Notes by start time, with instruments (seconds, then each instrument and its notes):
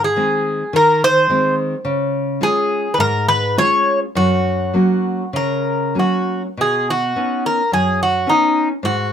Already playing: nylon-string guitar G#2
0.04 bouzouki G#4
0.16 nylon-string guitar D#3 G#3 C4
0.73 nylon-string guitar D#3, bouzouki A#4
1.04 bouzouki C5
1.29 nylon-string guitar D#3 G#3 C4
1.85 nylon-string guitar C#3
2.41 nylon-string guitar G#3 C#4 F4, bouzouki G#4
2.94 bouzouki B4
2.98 nylon-string guitar G#2, bouzouki A#4
3.28 bouzouki B4
3.57 nylon-string guitar G#3 C#4 F4, bouzouki C#5
4.15 nylon-string guitar F#2, bouzouki F#4
4.74 nylon-string guitar F#3 A#3 C#4
5.33 nylon-string guitar C#3, bouzouki A#4
5.95 nylon-string guitar F#3 A#3 C#4
5.99 bouzouki F#4
6.57 nylon-string guitar B2, bouzouki G#4
6.90 bouzouki F#4
7.16 nylon-string guitar B3 C#4 D#4
7.46 bouzouki A#4
7.72 nylon-string guitar F#2, bouzouki G#4
8.03 bouzouki F#4
8.27 nylon-string guitar B3 C#4 D#4, bouzouki D#4
8.83 nylon-string guitar G#2, bouzouki F#4